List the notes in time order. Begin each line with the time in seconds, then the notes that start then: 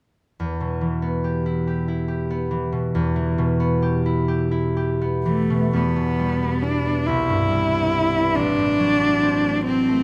0.40 E2
0.60 B2
0.81 E3
1.02 B3
1.24 G4
1.46 E4
1.67 G4
1.88 E4
2.08 G4
2.30 B3
2.51 E3
2.72 B2
2.95 E2
3.16 E3
3.38 B2
3.60 B3
3.82 G4
4.06 E4
4.28 G4
4.51 E4
4.77 G4
5.01 B3
5.26 E3 A3
5.50 B2
5.73 E2 B3
5.96 B2
6.19 G3
6.42 B3
6.63 D4 E4
6.86 B3
7.07 C2 E4
7.29 G2
7.51 G3
7.72 B3
7.93 E4
8.16 B3
8.36 A1 D4
8.58 A2
8.79 F#3
9.01 A3
9.23 C4
9.44 A3
9.66 C4
9.89 A3